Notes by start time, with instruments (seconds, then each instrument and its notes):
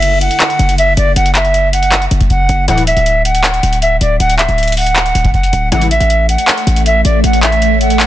Already playing: 808-style bass F#1, flute E5
0.02 closed hi-hat
0.21 flute F#5, closed hi-hat
0.31 closed hi-hat
0.40 clap, closed hi-hat
0.50 closed hi-hat
0.59 808-style bass F#1, closed hi-hat
0.69 closed hi-hat
0.78 flute E5, closed hi-hat
0.97 808-style bass F#1, flute D5, closed hi-hat
1.16 808-style bass F#1, flute F#5, closed hi-hat
1.26 closed hi-hat
1.35 flute E5, clap, closed hi-hat
1.45 closed hi-hat
1.54 closed hi-hat
1.73 flute F#5, closed hi-hat
1.83 closed hi-hat
1.92 clap, closed hi-hat
2.02 closed hi-hat
2.11 808-style bass F#1, closed hi-hat
2.21 kick, closed hi-hat
2.30 flute F#5, kick, closed hi-hat
2.49 808-style bass F#1, closed hi-hat
2.68 808-style bass D1, analog polysynth A2 E3, flute F#5, closed hi-hat
2.78 closed hi-hat
2.87 flute E5, closed hi-hat
2.97 808-style bass D1, closed hi-hat
3.06 closed hi-hat
3.25 flute F#5, closed hi-hat
3.35 closed hi-hat
3.44 clap, closed hi-hat
3.54 closed hi-hat
3.63 808-style bass D1, closed hi-hat
3.73 closed hi-hat
3.82 flute E5, closed hi-hat
4.01 808-style bass D1, flute D5, closed hi-hat
4.20 808-style bass D1, flute F#5, closed hi-hat
4.30 closed hi-hat
4.38 flute E5, clap, closed hi-hat
4.49 808-style bass D1, closed hi-hat
4.58 closed hi-hat
4.63 closed hi-hat
4.68 closed hi-hat
4.72 closed hi-hat
4.77 flute F#5, open hi-hat
4.86 closed hi-hat
4.96 clap, closed hi-hat
5.06 closed hi-hat
5.15 808-style bass D1, closed hi-hat
5.25 kick, closed hi-hat
5.34 flute F#5, kick, closed hi-hat
5.43 closed hi-hat
5.53 808-style bass D1, closed hi-hat
5.72 808-style bass A1, analog polysynth C#2 A2 E3, ambient pad A3 A4 C#5 E5, flute F#5, closed hi-hat
5.82 closed hi-hat
5.91 flute E5, closed hi-hat
6.00 808-style bass A1, closed hi-hat
6.10 closed hi-hat
6.29 flute F#5, closed hi-hat
6.38 closed hi-hat
6.48 clap, closed hi-hat
6.58 closed hi-hat
6.67 808-style bass A1, closed hi-hat
6.76 closed hi-hat
6.86 flute E5, closed hi-hat
7.05 808-style bass A1, flute D5, closed hi-hat
7.24 808-style bass A1, flute F#5, closed hi-hat
7.33 closed hi-hat
7.43 flute E5, clap, closed hi-hat
7.52 closed hi-hat
7.62 closed hi-hat
7.81 flute F#5, closed hi-hat
7.90 closed hi-hat
8.00 clap, closed hi-hat